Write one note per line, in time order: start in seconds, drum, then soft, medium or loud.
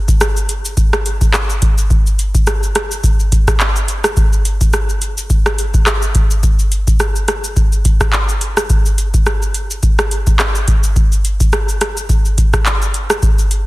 0.08 kick loud
0.08 shaker medium
0.21 cross-stick loud
0.21 shaker medium
0.37 shaker medium
0.49 closed hi-hat medium
0.49 shaker medium
0.65 shaker medium
0.77 kick medium
0.77 shaker medium
0.93 cross-stick loud
0.93 shaker soft
1.06 closed hi-hat medium
1.06 shaker medium
1.21 kick loud
1.21 shaker medium
1.34 cross-stick medium
1.34 clap loud
1.34 shaker medium
1.50 shaker medium
1.62 kick loud
1.62 closed hi-hat medium
1.62 shaker medium
1.78 shaker medium
1.90 kick loud
1.90 shaker medium
2.06 shaker medium
2.19 closed hi-hat medium
2.19 shaker medium
2.35 kick loud
2.35 shaker medium
2.47 cross-stick medium
2.47 shaker medium
2.63 shaker medium
2.75 cross-stick loud
2.75 closed hi-hat medium
2.75 shaker medium
2.91 shaker medium
3.04 kick medium
3.04 shaker medium
3.20 shaker medium
3.32 kick medium
3.32 closed hi-hat medium
3.32 shaker medium
3.48 kick loud
3.48 cross-stick medium
3.48 shaker medium
3.60 clap medium
3.60 shaker medium
3.76 shaker medium
3.88 closed hi-hat medium
3.88 shaker medium
4.04 cross-stick loud
4.04 shaker medium
4.17 kick loud
4.17 shaker medium
4.33 shaker medium
4.45 closed hi-hat medium
4.45 shaker medium
4.61 kick medium
4.61 shaker medium
4.73 cross-stick medium
4.73 shaker medium
4.89 shaker medium
5.02 closed hi-hat medium
5.02 shaker medium
5.18 shaker medium
5.30 kick medium
5.30 shaker medium
5.46 cross-stick loud
5.46 shaker soft
5.59 closed hi-hat medium
5.59 shaker medium
5.74 kick loud
5.74 shaker medium
5.87 cross-stick loud
5.87 clap medium
5.87 shaker medium
6.02 shaker medium
6.15 kick loud
6.15 closed hi-hat medium
6.15 shaker medium
6.31 shaker medium
6.43 kick loud
6.43 shaker medium
6.59 shaker medium
6.72 closed hi-hat medium
6.72 shaker medium
6.87 kick medium
6.87 shaker medium
7.00 cross-stick medium
7.00 shaker medium
7.16 shaker medium
7.28 cross-stick medium
7.28 closed hi-hat medium
7.28 shaker medium
7.44 shaker medium
7.56 kick medium
7.56 shaker medium
7.72 shaker medium
7.85 kick medium
7.85 closed hi-hat medium
7.85 shaker medium
8.01 kick loud
8.01 cross-stick medium
8.01 shaker medium
8.13 clap loud
8.13 shaker medium
8.29 shaker medium
8.41 closed hi-hat medium
8.41 shaker medium
8.57 cross-stick medium
8.57 shaker medium
8.70 kick loud
8.70 shaker medium
8.86 shaker medium
8.98 closed hi-hat medium
8.98 shaker medium
9.14 kick medium
9.14 shaker medium
9.26 cross-stick medium
9.26 shaker medium
9.42 shaker medium
9.54 closed hi-hat medium
9.54 shaker medium
9.71 shaker medium
9.83 kick medium
9.83 shaker medium
9.99 cross-stick loud
9.99 shaker soft
10.11 closed hi-hat medium
10.11 shaker medium
10.27 kick loud
10.27 shaker medium
10.39 cross-stick medium
10.39 clap medium
10.39 shaker medium
10.55 shaker medium
10.68 kick loud
10.68 closed hi-hat medium
10.68 shaker medium
10.84 shaker medium
10.96 kick loud
10.96 shaker medium
11.12 shaker medium
11.25 closed hi-hat medium
11.25 shaker medium
11.40 kick medium
11.40 shaker medium
11.52 cross-stick medium
11.52 shaker medium
11.69 shaker medium
11.81 cross-stick medium
11.81 closed hi-hat medium
11.81 shaker medium
11.97 shaker medium
12.09 kick loud
12.09 shaker medium
12.25 shaker medium
12.38 kick medium
12.38 closed hi-hat medium
12.38 shaker medium
12.53 kick loud
12.53 cross-stick medium
12.53 shaker medium
12.66 clap loud
12.66 shaker medium
12.82 shaker medium
12.94 closed hi-hat medium
12.94 shaker medium
13.10 cross-stick loud
13.10 shaker medium
13.23 kick loud
13.23 shaker medium
13.39 shaker medium
13.51 closed hi-hat medium
13.51 shaker medium